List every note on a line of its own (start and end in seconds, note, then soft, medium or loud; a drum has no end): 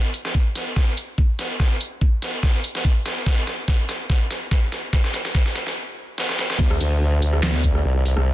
0.14 closed hi-hat medium
0.25 snare soft
0.35 kick medium
0.56 snare soft
0.56 closed hi-hat medium
0.76 kick medium
0.76 snare medium
0.97 closed hi-hat medium
1.18 kick medium
1.39 snare medium
1.39 closed hi-hat medium
1.60 kick medium
1.60 snare medium
1.81 closed hi-hat medium
2.01 kick loud
2.22 snare medium
2.22 closed hi-hat medium
2.43 kick loud
2.43 snare medium
2.64 closed hi-hat medium
2.75 snare medium
2.85 kick medium
3.06 snare medium
3.06 closed hi-hat medium
3.26 kick loud
3.26 snare medium
3.47 snare medium
3.47 closed hi-hat medium
3.68 kick loud
3.68 snare medium
3.89 snare medium
3.89 closed hi-hat medium
4.10 kick loud
4.10 snare medium
4.31 snare medium
4.31 closed hi-hat medium
4.51 kick loud
4.51 snare medium
4.72 snare medium
4.72 closed hi-hat medium
4.93 kick medium
4.93 snare medium
5.04 snare medium
5.14 snare medium
5.14 closed hi-hat medium
5.25 snare medium
5.25 closed hi-hat soft
5.35 kick loud
5.35 snare medium
5.46 snare medium
5.56 snare medium
5.56 closed hi-hat medium
5.67 snare medium
6.18 snare medium
6.29 snare medium
6.39 snare medium
6.50 snare medium
6.60 6.79 D2 medium
6.60 kick loud
6.60 crash loud
6.71 cross-stick medium
6.80 7.41 D2 loud
6.80 closed hi-hat medium
7.22 closed hi-hat medium
7.33 cross-stick medium
7.43 7.83 D2 loud
7.43 snare loud
7.43 clap loud
7.64 kick medium
7.64 closed hi-hat medium
7.75 cross-stick soft
7.85 8.15 C2 loud
8.06 open hi-hat medium
8.17 8.34 C2 loud
8.17 cross-stick medium